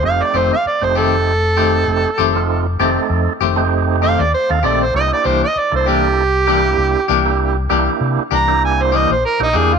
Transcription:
X:1
M:4/4
L:1/16
Q:"Swing 16ths" 1/4=98
K:Fmix
V:1 name="Harmonica"
f d c f d c A8- A2- | A2 z8 f d c f d c | e d c e d c G8- G2- | G2 z4 b2 _a c e c B E _A F |]
V:2 name="Tonewheel organ"
[A,CEG]3 z2 [A,CEG]3 z2 [A,CEG]3 z2 [A,CEF]- | [A,CEF] z [A,CEA]3 z2 [A,CEG]4 z2 [A,CEA] [A,CEA] z | [B,D=EG]3 z2 [B,DEA]3 z2 [B,DEG]3 z2 [B,DEG]- | [B,D=EG] z [B,DEG]3 z2 [B,DEG]4 z2 [B,DEG] [B,DEG] z |]
V:3 name="Clean electric guitar"
z2 [E,A,CG]2 z2 [E,A,CG]2 z2 [E,A,CG]2 z2 [E,A,CG]2 | z2 [E,A,CG]2 z2 [E,A,CG]2 z2 [E,A,CG]2 z2 [E,A,CG]2 | z2 [=E,B,DG]2 z2 [E,B,DG]2 z2 [E,B,DG]2 z2 [E,B,DG]2 | z2 [=E,B,DG]2 z2 [E,B,DG]2 z2 [E,B,DG]2 z2 [E,B,DG]2 |]
V:4 name="Fingered electric bass" clef=bass
F,,, z F,,, z2 F,,,6- F,,, F,,, z F,,,2- | F,,,2 F,,, z F,, z F,,,4- F,,, E,, z E,, B,,,2 | C,, z C,, z2 C,,6- C,, C,, z C,,2- | C,,2 C,, z C, z C,,4- C,, B,,, z B,,, =E,,2 |]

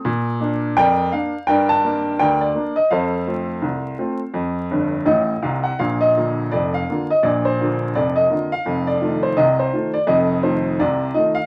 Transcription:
X:1
M:2/4
L:1/16
Q:"Swing 16ths" 1/4=84
K:Bb
V:1 name="Upright piano"
z4 [Bdg]2 f2 | [Bdg] a3 [Bdg] d2 e | [Acf]8- | [Acf]4 e2 f _g |
f e3 d f2 e | d c3 d e2 f- | f d2 c e c2 d | e2 c2 d2 e f |]
V:2 name="Upright piano" clef=bass
B,,2 [B,D]2 F,,2 [B,D]2 | G,,2 [B,D]2 D,,2 [B,D]2 | F,,2 [A,CF]2 C,,2 [A,CF]2 | F,,2 [G,,,G,,]2 [A,,,A,,]2 [C,,C,]2 |
[B,,,B,,]2 [D,B,F]2 [F,,,F,,]2 [D,B,F]2 | [B,,,B,,]2 [D,B,F]2 [F,,,F,,]2 [D,B,F]2 | [F,,,F,,]2 [E,A,F]2 [C,,C,]2 [E,A,F]2 | [F,,,F,,]2 [E,A,F]2 [C,,C,]2 [E,A,F]2 |]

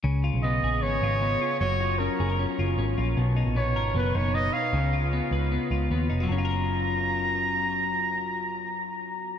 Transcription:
X:1
M:4/4
L:1/16
Q:1/4=153
K:F#
V:1 name="Trumpet"
z4 d4 c8 | c4 A4 z8 | z4 c4 B2 c2 d2 e2- | e4 z12 |
a16- | a16 |]
V:2 name="Clean electric guitar"
C,2 E2 B,2 G2 B,2 E2 B,2 E2 | F,2 E2 C2 G A C2 E2 C2 E2 | B,,2 D2 B,2 A2 B,2 D2 B,2 D2 | C,2 E2 B,2 B2 B,2 E2 B,2 D E |
[F,CEA]16- | [F,CEA]16 |]
V:3 name="Picked electric bass" clef=bass
C,,3 B,,,3 A,,,2 G,,,2 G,,,4 z2 | F,,,4- F,,, z F,,,3 z F,,,2 G,,,2 A,,,2 | B,,,3 A,,,3 G,,,2 F,,,2 F,,,4 z2 | C,,4- C,, z C,,3 z C,,2 D,,2 E,,,2 |
F,,,16- | F,,,16 |]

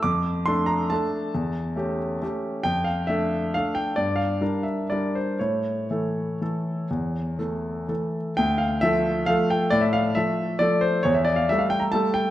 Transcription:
X:1
M:3/4
L:1/16
Q:1/4=134
K:Dm
V:1 name="Grand piano"
d'4 c'2 b2 a4- | a6 z6 | g2 f2 e4 f2 g2 | d2 f4 e2 d2 c2 |
^c12- | ^c8- c2 z2 | g2 f2 e4 f2 g2 | d e f2 e4 d2 c2 |
^c e d f e f g b a2 g2 |]
V:2 name="Grand piano"
F,,4 [A,DA]4 [A,DA]4 | E,,4 [A,^CG]4 [A,CG]4 | F,,4 [A,DA]4 [A,DA]4 | G,,4 [G,DB]4 [G,DB]4 |
A,,4 [E,A,A]4 [E,A,A]4 | E,,4 [E,A,A]4 [E,A,A]4 | D,,4 [F,A,A]4 [F,A,A]4 | A,,4 [F,A,A]4 [F,A,A]4 |
E,,4 [G,A,A]4 [G,A,A]4 |]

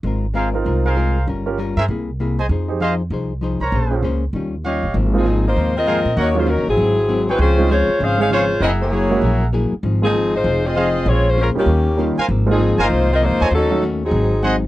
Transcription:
X:1
M:4/4
L:1/8
Q:"Swing" 1/4=196
K:Ab
V:1 name="Trumpet section"
z2 [ABcf] z2 [ABcf]3 | z3 [ABc_f] z3 [Acea] | z2 [Acef] z4 [Bcdb]- | [Bcdb]2 z4 [Gdef]2 |
z6 [ABcf] z | [Bde_g] z6 [Acd=g]- | [Acdg]2 z4 [Acdf] z | [AB_f_g]4- [ABfg] z3 |
z6 [Acef] z | z6 z [Bcfa] | z3 [Bcfa] z3 [=Ade_a] | z6 [Ace_g] z |]
V:2 name="Saxophone section"
z8 | z8 | z8 | z8 |
z [F,CEA]2 [B,EFc]2 [CFBe]3 | [B,E_Gd] [A,DFc] [_G,DEB] [G,C_FA]4 [G,C=E_c] | [A,DFc]2 [A,Fcd]2 [DAcf] [DAcf] [A,Fcd]2 | [C_FAe] [B,FAd]4 z3 |
z [F,CEA]2 [A,EFc]2 [CFAe]3 | [A,CFd] [A,DFc] [A,DFB] [E,B,DG]4 z | z [F,CEA]2 [B,EFc]2 [CFBe] [B,EFc]2 | [_G,DE=A]2 z [G,CE_A]4 z |]
V:3 name="Grand piano"
z3 [CEFB]3 z2 | z [DFGB] z6 | z [EGAc] z6 | z [DFAc] z6 |
z [A,B,CEF] z6 | z [_G,B,DEF] z6 | z [A,CDEF] z3 [A,CDEA] z2 | z3 [A,B,D_F_G] z4 |
z [A,B,CEF] z6 | z3 [G,B,DEF] z2 [G,B,DEF] z | z [A,B,CEF] z6 | z [_G,=A,DE_G] z6 |]
V:4 name="Hollow-body jazz guitar"
[A,CFB] z [A,CFB] z [A,CFB] z [A,CFB] z | [G,DFB] z [G,DFB] z [C,B,=EA] z [C,B,EA] z | [F,EAc] z [F,EAc] z [F,EAc] z [F,EAc] z | [B,DAc] z [B,DAc] z [E,G,DF] z [E,G,DF] z |
[A,,F,B,C] z [A,,F,B,C] z [A,,F,B,C] z [A,,F,B,C] z | [E,B,D_G] z [E,B,DG] z [A,,_G,C=E] z [A,,G,CE] z | [D,F,A,C] z [D,F,A,C] z [D,F,A,C] z [D,F,A,C] z | [_G,B,_FA] z [G,B,FA] z [G,B,FA] z [G,B,FA] z |
[A,,F,CE] z [A,,F,CE] z [F,CEA] z [F,CEA] z | [B,DAc] z [B,DAc] z [E,B,DG] z [E,B,DG] z | [A,,F,B,C] z [A,,F,B,C] z [A,,F,B,C] z [A,,F,B,C] z | [E,=A,D_G] z [E,A,DG] z [_A,,_G,CE] z [A,,G,CE] z |]
V:5 name="Upright bass" clef=bass
A,,,4 C,,4 | G,,,3 G,, C,,4 | F,,4 C,,3 C,, | B,,,2 D,,2 E,,3 G,,, |
A,,,4 E,,3 B,, | E,,2- (3E,, D,, =A,,, _A,,,4 | D,,3 z A,,,4 | _G,,,4 B,,,3 z |
A,,,4 F,,,4 | B,,,3 z E,,3 z | A,,,3 G,,, C,,2- (3C,, E,, _F,, | E,,4 A,,,4 |]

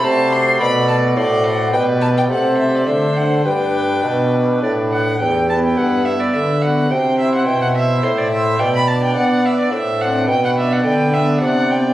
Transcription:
X:1
M:3/4
L:1/16
Q:1/4=106
K:G
V:1 name="Violin"
c4 d4 c4 | B4 A4 c4 | B8 d2 f2 | g2 a g f2 e d e2 f2 |
g2 e f g f e2 c d e2 | g b a g f2 e d e2 f2 | g f e f g2 e2 f2 g2 |]
V:2 name="Violin"
a2 c'2 b2 a2 d2 f2 | g2 a g f2 e d e2 f2 | g8 z4 | G4 A4 B4 |
c4 e8 | d8 c4 | B4 B4 d4 |]
V:3 name="Pipe organ"
[A,Fd]12 | [B,Gd]4 [A,Gc]4 [A,Dc]4 | [DB]12 | z2 [B,EB]4 [B,EB]2 z2 [B,FB]2 |
z2 [Ec]4 [Ec]4 [Ec]2 | z2 [Dd]4 [Dd]2 z2 [CDd]2 | z2 [B,Dd]4 [B,Dd]4 [B,Dd]2 |]
V:4 name="Pipe organ" clef=bass
C,4 B,,4 A,,4 | B,,4 C,4 D,4 | G,,4 B,,4 A,,4 | E,,4 G,,4 D,4 |
C,4 B,,4 A,,4 | B,,4 B,4 A,,4 | B,,4 D,4 C,4 |]
V:5 name="Bassoon" clef=bass
C,4 B,,4 A,,4 | B,,4 C,4 D,4 | G,,4 B,,4 A,,4 | E,,4 G,,4 D,4 |
C,4 B,,4 A,,4 | B,,4 B,4 A,,4 | B,,4 D,4 C,4 |]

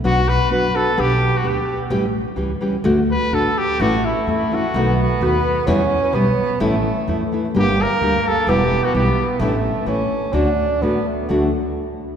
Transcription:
X:1
M:2/4
L:1/16
Q:1/4=129
K:D
V:1 name="Trumpet"
F2 B2 B2 A2 | G3 F G3 z | z8 | z2 B2 A2 G2 |
F2 E2 E2 F2- | F2 F2 B3 z | z8 | z8 |
G2 _B4 A2 | G3 F G3 z | z8 | z8 |
z8 |]
V:2 name="Nylon-string guitar"
[B,,F,B,DFB]2 z2 [B,DFB]2 [B,DFB]2 | [B,DGB]2 z2 [B,DGB]2 z2 | [A,,E,G,CG]2 z2 [E,G,CG]2 [E,G,CG]2 | [D,A,DF]2 z2 [D,A,DF]2 z2 |
[A,,E,A,CE]2 z2 [E,A,CE]2 [E,A,CE]2 | [B,,^D,A,B,F]2 z2 [D,A,B,F]2 z2 | [E,,B,,E,G,B,E]2 z2 [E,G,B,E]2 z2 | [A,,E,A,CE]2 z2 [E,A,CE]2 [E,A,CE]2 |
[G,,D,G,_B,DG]2 z2 [G,B,DG]2 z2 | [E,,B,,E,G,B,E]2 z2 [E,G,B,E]2 z2 | [A,,E,A,DE]2 z2 [E,A,CE]2 z2 | [D,A,DF]2 z2 [D,A,DF]2 z2 |
[D,A,DF]2 z6 |]
V:3 name="Tenor saxophone"
z8 | z8 | z8 | z8 |
A,8 | B,8 | C4 B,4 | A,6 z2 |
_B,8 | B,8 | A,4 C4 | D4 B,2 A,2 |
A,2 z6 |]
V:4 name="Upright bass" clef=bass
B,,,4 F,,2 z2 | B,,,4 D,,2 z2 | A,,,4 C,,2 z2 | D,,4 A,,,2 z2 |
A,,,4 E,,2 z2 | B,,,4 ^D,,2 z2 | E,,4 B,,,2 z2 | A,,,4 E,,2 z2 |
G,,,4 D,,2 z2 | E,,,4 B,,,2 z2 | A,,,4 A,,,2 z2 | D,,4 A,,,2 z2 |
D,,2 z6 |]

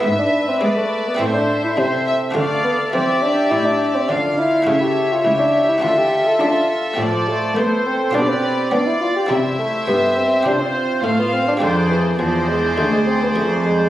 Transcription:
X:1
M:4/4
L:1/16
Q:1/4=104
K:Ddor
V:1 name="Violin section"
e4 e12 | f4 e8 f4 | ^c8 A8 | c8 B4 d4 |
c12 c4 | d4 d12 |]
V:2 name="Violin section"
e4 d4 c4 c2 e2 | d4 d8 f4 | e4 e12 | d4 c4 d4 d4 |
e8 c4 f4 | c4 c12 |]
V:3 name="Viola section"
B8 A4 A4- | A4 G8 F4 | A4 G4 F8 | A4 A4 G4 F4 |
E4 G4 F4 F4 | _A4 A12 |]
V:4 name="Bassoon"
B, D2 C B, A,2 B, C D2 E C4 | A,2 B,2 C2 D2 E D2 C D2 E2- | E G2 F E D2 E F G2 A F3 z | F,2 A,2 B,2 C2 D C3 D E F G |
G,2 A,2 B,2 C2 D C3 A, B, C D | D,2 E,2 F,2 _A,2 =A, _A, C B, =A,2 _A,2 |]
V:5 name="Harpsichord"
[B,E]8 [A,CE]8 | [A,DF]16 | [A,E]8 [A,DF]8 | [A,CF]8 [DF]8 |
[CE]8 [CD]8 | [_A,CD]16 |]
V:6 name="Harpsichord" clef=bass
^G,,4 ^G,4 A,,4 C,4 | D,4 E,4 A,,4 D,4 | ^C,4 ^C,,4 D,4 D4 | A,,4 A,4 B,,4 B,4 |
C,4 G,,4 C,4 A,,4 | F,,4 E,,4 D,,4 F,,4 |]
V:7 name="Cello section" clef=bass
^G,,4 ^G,4 A,,4 C,4 | D,4 E,4 A,,4 D,4 | ^C,4 ^C,,4 D,4 D4 | A,,4 A,4 B,,4 B,4 |
C,4 G,,4 C,4 A,,4 | F,,4 E,,4 D,,4 F,,4 |]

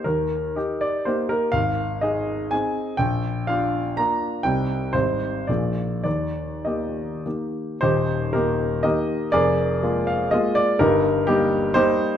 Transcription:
X:1
M:3/4
L:1/8
Q:1/4=121
K:Eb
V:1 name="Grand piano"
B3 d c B | f2 e2 a2 | g2 f2 b2 | g2 c2 d2 |
d2 e2 z2 | [EGc]2 [EGB]2 [GBe]2 | [ABd]3 f e d | [EGB]2 [B,EG]2 [EGc]2 |]
V:2 name="Grand piano"
E,,2 [EG]2 [B,EG]2 | A,,,2 [EA]2 [CEA]2 | B,,,2 [DF]2 [B,DF]2 | [C,,G,CE]2 [A,,,G,CE]2 [B,,,F,B,A]2 |
E,,2 [B,G]2 [E,B,G]2 | [E,,,E,,]2 [E,B,]2 [E,B,]2 | [F,,,F,,]2 [A,B,F]2 [A,B,F]2 | [G,,,G,,]2 G,2 [G,B,]2 |]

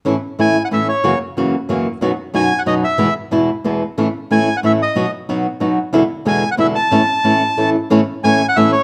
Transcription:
X:1
M:3/4
L:1/16
Q:1/4=184
K:A
V:1 name="Bandoneon"
z4 g3 f e2 c2- | c2 z8 z2 | z4 g3 f ^d2 e2- | e2 z8 z2 |
z4 g3 f e2 ^d2- | ^d2 z8 z2 | z4 g3 f e2 a2- | a8- a2 z2 |
z4 g3 f e2 c2 |]
V:2 name="Nylon-string guitar"
[A,,E,A,CE]2 z2 [A,,E,A,CE]2 z2 [A,,E,A,CE]2 z2 | [F,,C,E,^A,CF]2 z2 [F,,C,E,A,CF]2 z2 [F,,C,E,A,CF]2 z2 | [F,,B,,F,B,^DF]2 z2 [F,,B,,F,B,DF]2 z2 [F,,B,,F,B,DF]2 z2 | [E,,B,,E,G,B,E]2 z2 [E,,B,,E,G,B,E]2 z2 [E,,B,,E,G,B,E]2 z2 |
[A,,E,A,CE]2 z2 [A,,E,A,CE]2 z2 [A,,E,A,CE]2 z2 | [B,,F,B,^DF]2 z2 [B,,F,B,DF]2 z2 [B,,F,B,DF]2 z2 | [E,,B,,D,G,B,E]2 z2 [E,,B,,D,G,B,E]2 z2 [E,,B,,D,G,B,E]2 z2 | [A,,E,A,CE]2 z2 [A,,E,A,CE]2 z2 [A,,E,A,CE]2 z2 |
[A,,E,A,CE]2 z2 [A,,E,A,CE]2 z2 [A,,E,A,CE]2 z2 |]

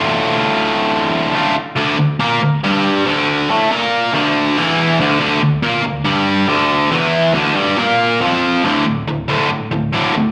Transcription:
X:1
M:4/4
L:1/8
Q:1/4=140
K:Dm
V:1 name="Overdriven electric guitar" clef=bass
[D,,A,,D,A,F]6 [D,,A,,D,A,F] z | [D,,D,] D,, [B,,B,] D,, [G,,G,]2 [D,,D,]2 | [A,,A,] [B,,B,]2 [D,,D,]2 [E,,E,]2 [D,,D,] | [D,,D,] D,, [B,,B,] D,, [G,,G,]2 [D,,D,]2 |
[E,,E,]2 [D,,D,] [G,,G,] [B,,B,]2 [F,,F,]2 | [D,,A,,D,] [D,,A,,] [D,,A,,] [D,,A,,D,] [D,,A,,] [D,,A,,] [D,,A,,D,] [D,,A,,] |]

